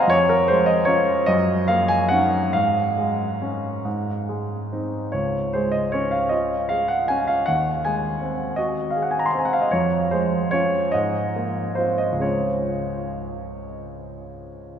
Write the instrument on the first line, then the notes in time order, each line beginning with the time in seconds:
grand piano
Already playing: C4 F#4 G#4 D#5 F5 F#5 G#5 A#5 C6
0.02 D#5
0.07 F2 C#5
0.29 A#4
0.48 G#3 C5
0.66 D#5
0.85 C#4 F4 C#5
1.26 F#2 D#5
1.68 A#3 F5
1.88 G#5
2.09 C#4 D#4 F#5
2.53 G#2 F5
2.98 G#3
3.42 C#4
3.85 G#2
4.29 G#3
4.72 C4 D#4
5.12 C#2 C#5
5.53 G#3 C5
5.72 D#5
5.92 C#4 C#5
6.11 F5
6.29 F4 D#5
6.69 G#4 F5
6.88 F#5
7.08 C#4 G#5
7.27 F5
7.46 D#2 F#5
7.85 G#3 G#5
8.22 C4
8.56 F#4 D#5
8.90 F5
8.96 G#4
9.02 F#5
9.11 G#5
9.19 A#5
9.26 C6
9.31 C4 A#5
9.39 G#5
9.45 F#5
9.53 F5
9.61 D#5
9.71 F2 C#5
10.11 G#3 C5
10.51 C#4 F4 C#5
10.92 G#2 D#5
11.36 A#3
11.75 C4 F4 C5
11.98 D#5
12.12 C#2
12.20 G#3 C#4 F4 C#5